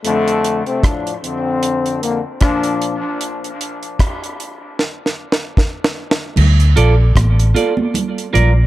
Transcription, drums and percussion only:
0.05 closed hi-hat
0.28 closed hi-hat
0.44 closed hi-hat
0.66 closed hi-hat
0.83 kick, cross-stick, closed hi-hat
1.07 closed hi-hat
1.24 closed hi-hat
1.63 closed hi-hat
1.86 closed hi-hat
2.03 closed hi-hat
2.41 kick, cross-stick, closed hi-hat
2.63 closed hi-hat
2.82 closed hi-hat
3.21 closed hi-hat
3.44 closed hi-hat
3.61 closed hi-hat
3.83 closed hi-hat
3.99 kick, cross-stick, closed hi-hat
4.24 closed hi-hat
4.40 closed hi-hat
4.79 snare
5.06 snare
5.32 snare
5.57 kick, snare
5.84 snare
6.11 snare
6.36 crash, low conga
6.60 closed hi-hat
6.77 closed hi-hat
7.16 kick, cross-stick, closed hi-hat, high conga
7.39 closed hi-hat
7.54 closed hi-hat, high conga
7.77 high conga
7.94 closed hi-hat, low conga
8.18 closed hi-hat
8.34 closed hi-hat, low conga

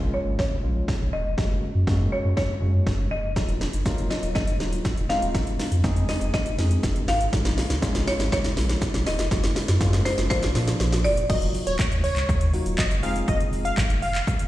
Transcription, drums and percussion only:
0.39 kick, snare
0.88 kick, snare
1.38 kick, snare
1.87 kick, snare
2.37 kick, snare
2.87 kick, snare
3.36 kick, snare, shaker
3.49 closed hi-hat, shaker
3.61 snare, shaker
3.73 closed hi-hat, shaker
3.86 kick, snare, shaker
3.98 closed hi-hat, shaker
4.11 snare, shaker
4.23 closed hi-hat, shaker
4.35 kick, snare, shaker
4.48 closed hi-hat, shaker
4.60 snare, shaker
4.73 closed hi-hat, shaker
4.85 kick, snare, shaker
4.98 closed hi-hat, shaker
5.10 snare, shaker
5.22 closed hi-hat, shaker
5.35 kick, snare, shaker
5.47 closed hi-hat, shaker
5.59 snare, open hi-hat, shaker
5.72 closed hi-hat, shaker
5.84 kick, snare, shaker
5.96 closed hi-hat, shaker
6.09 snare, open hi-hat, shaker
6.21 closed hi-hat, shaker
6.34 kick, snare, shaker
6.46 closed hi-hat, shaker
6.58 snare, open hi-hat, shaker
6.71 closed hi-hat, shaker
6.83 kick, snare, shaker
6.96 closed hi-hat, shaker
7.08 snare, open hi-hat, shaker
7.21 closed hi-hat, shaker
7.33 kick, snare, shaker
7.45 snare, closed hi-hat, shaker
7.58 snare, open hi-hat, shaker
7.70 snare, closed hi-hat, shaker
7.82 kick, snare, shaker
7.95 snare, closed hi-hat, shaker
8.07 snare, open hi-hat, shaker
8.20 snare, closed hi-hat, shaker
8.32 kick, snare, shaker
8.44 snare, closed hi-hat, shaker
8.57 snare, open hi-hat, shaker
8.69 snare, closed hi-hat, shaker
8.82 kick, snare, shaker
8.94 snare, closed hi-hat, shaker
9.06 snare, open hi-hat, shaker
9.19 snare, closed hi-hat, shaker
9.31 kick, snare, shaker
9.44 snare, closed hi-hat, shaker
9.56 snare, open hi-hat, shaker
9.68 snare, closed hi-hat, shaker
9.81 kick, snare, shaker
9.93 snare, closed hi-hat, shaker
10.05 snare, open hi-hat, shaker
10.18 snare, closed hi-hat, shaker
10.30 kick, snare, shaker
10.43 snare, closed hi-hat, shaker
10.55 snare, open hi-hat, shaker
10.68 snare, closed hi-hat, shaker
10.80 snare, shaker
10.93 snare, closed hi-hat, shaker
11.05 open hi-hat, shaker
11.17 closed hi-hat, shaker
11.30 kick, crash, shaker
11.42 closed hi-hat, shaker
11.54 open hi-hat, shaker
11.67 closed hi-hat, shaker
11.79 kick, clap, shaker
11.92 closed hi-hat, shaker
12.04 open hi-hat, shaker
12.16 clap, closed hi-hat, shaker
12.29 kick, shaker
12.41 closed hi-hat, shaker
12.54 open hi-hat, shaker
12.66 closed hi-hat, shaker
12.78 kick, clap, shaker
12.91 closed hi-hat, shaker
13.03 open hi-hat, shaker
13.16 closed hi-hat, shaker
13.28 kick, shaker
13.40 closed hi-hat, shaker
13.53 open hi-hat, shaker
13.65 closed hi-hat, shaker
13.77 kick, clap, shaker
13.90 closed hi-hat, shaker
14.02 open hi-hat, shaker
14.15 clap, closed hi-hat, shaker
14.27 kick, shaker
14.39 closed hi-hat, shaker

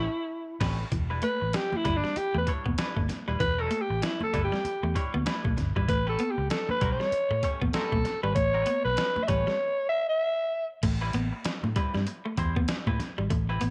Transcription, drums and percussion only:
0.61 kick, snare, crash
0.92 kick, closed hi-hat
1.22 closed hi-hat, muted conga, high conga
1.53 snare, closed hi-hat
1.72 high conga, low conga
1.85 kick, closed hi-hat
2.05 snare
2.16 closed hi-hat, muted conga
2.47 kick, closed hi-hat, muted conga
2.66 kick, high conga
2.78 snare, closed hi-hat, muted conga
2.97 kick, high conga
3.09 snare, closed hi-hat, low conga
3.40 kick, closed hi-hat
3.71 closed hi-hat, muted conga, high conga
4.02 snare, closed hi-hat
4.21 high conga, low conga
4.34 kick, closed hi-hat
4.54 snare
4.65 closed hi-hat, muted conga
4.96 kick, closed hi-hat, muted conga
5.14 high conga
5.26 snare, closed hi-hat
5.45 kick, high conga
5.57 kick, snare, closed hi-hat, muted conga, low conga
5.76 kick
5.88 kick, closed hi-hat
6.18 closed hi-hat, muted conga, high conga
6.50 snare, closed hi-hat, muted conga
6.69 high conga, low conga
6.81 kick, closed hi-hat
7.01 snare
7.12 closed hi-hat
7.43 kick, closed hi-hat
7.62 kick, high conga
7.73 snare, closed hi-hat
7.92 kick, high conga
8.05 snare, closed hi-hat, muted conga, low conga
8.36 kick, closed hi-hat
8.66 closed hi-hat, muted conga, high conga
8.97 snare, closed hi-hat, muted conga
9.16 high conga, low conga
9.28 kick, closed hi-hat
9.48 snare
10.83 kick, closed hi-hat, crash, muted conga
11.13 closed hi-hat, muted conga, high conga
11.45 snare, closed hi-hat
11.64 high conga, low conga
11.76 kick, closed hi-hat, muted conga
11.94 snare, low conga
12.07 closed hi-hat, muted conga
12.37 kick, closed hi-hat
12.56 kick, high conga
12.68 snare, closed hi-hat, muted conga
12.87 kick, high conga
13.00 snare, closed hi-hat, muted conga, low conga
13.30 kick, closed hi-hat, muted conga
13.60 closed hi-hat, muted conga, high conga

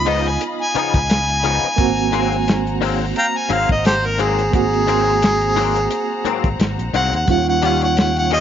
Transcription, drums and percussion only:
0.06 open hi-hat
0.26 closed hi-hat
0.41 closed hi-hat
0.75 closed hi-hat
0.94 kick, closed hi-hat
1.10 snare, closed hi-hat
1.29 closed hi-hat
1.45 closed hi-hat
1.63 closed hi-hat
1.78 kick, closed hi-hat
2.13 closed hi-hat
2.32 closed hi-hat
2.48 snare, closed hi-hat
2.67 closed hi-hat
2.82 open hi-hat
3.16 closed hi-hat
3.50 closed hi-hat
3.69 kick
3.85 snare, closed hi-hat
4.04 closed hi-hat
4.20 closed hi-hat
4.39 closed hi-hat
4.53 kick, closed hi-hat
4.73 closed hi-hat
4.88 closed hi-hat
5.22 snare, closed hi-hat
5.41 closed hi-hat
5.56 open hi-hat
5.76 closed hi-hat
5.91 closed hi-hat
6.25 closed hi-hat
6.44 kick, closed hi-hat
6.60 snare, closed hi-hat
6.79 closed hi-hat
6.94 closed hi-hat
7.13 closed hi-hat
7.28 kick, closed hi-hat
7.62 closed hi-hat
7.82 closed hi-hat
7.97 snare, closed hi-hat
8.17 closed hi-hat
8.31 open hi-hat

